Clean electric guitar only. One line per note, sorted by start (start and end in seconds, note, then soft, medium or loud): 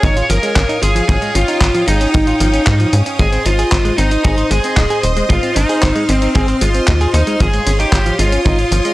0.03 0.15 D#4 loud
0.17 0.24 F4 medium
0.30 0.37 F3 medium
0.43 0.54 G#3 medium
0.56 0.61 C#4 medium
0.69 0.77 D#4 loud
0.82 0.90 F4 medium
0.95 1.03 F3 loud
1.09 1.16 F3 medium
1.22 1.29 G#3 medium
1.35 1.40 C#4 medium
1.48 1.60 D#4 medium
1.61 1.66 F4 medium
1.75 1.82 F3 loud
1.88 1.99 G#3 medium
2.01 2.08 C#4 medium
2.14 2.25 D#4 loud
2.27 2.35 F4 medium
2.40 2.48 F3 medium
2.53 2.61 C#4 medium
2.67 2.74 D#4 medium
2.80 2.87 F3 medium
2.93 3.04 C#4 medium
3.06 3.17 C#4 medium
3.19 3.27 G#3 medium
3.32 3.40 C4 medium
3.46 3.50 D#4 medium
3.59 3.70 G#4 medium
3.72 3.76 C5 medium
3.85 3.93 G#3 medium
3.98 4.09 C4 medium
4.11 4.19 D#4 medium
4.24 4.36 G#4 medium
4.38 4.45 C5 medium
4.51 4.58 G#3 medium
4.64 4.75 C4 medium
4.77 4.82 D#4 medium
4.90 4.98 G#4 loud
5.03 5.11 C5 medium
5.17 5.24 G#3 loud
5.30 5.37 G#3 medium
5.43 5.50 C4 medium
5.56 5.61 D#4 medium
5.69 5.81 G#4 medium
5.82 5.87 C5 medium
5.96 6.03 G#3 loud
6.09 6.20 C4 medium
6.22 6.29 D#4 medium
6.35 6.46 G#4 loud
6.48 6.56 C5 medium
6.61 6.69 G#3 medium
6.75 6.86 C4 medium
6.88 6.92 D#4 medium
7.01 7.08 G#4 loud
7.14 7.22 C5 medium
7.27 7.35 G#3 loud
7.40 7.48 F3 medium
7.54 7.61 G#3 medium
7.67 7.71 C#4 medium
7.80 7.91 D#4 medium
7.93 7.97 F4 medium
8.06 8.14 F3 loud
8.19 8.31 G#3 medium
8.32 8.40 C#4 medium
8.45 8.57 D#4 loud
8.59 8.66 F4 medium
8.72 8.79 F3 medium
8.85 8.94 G#3 medium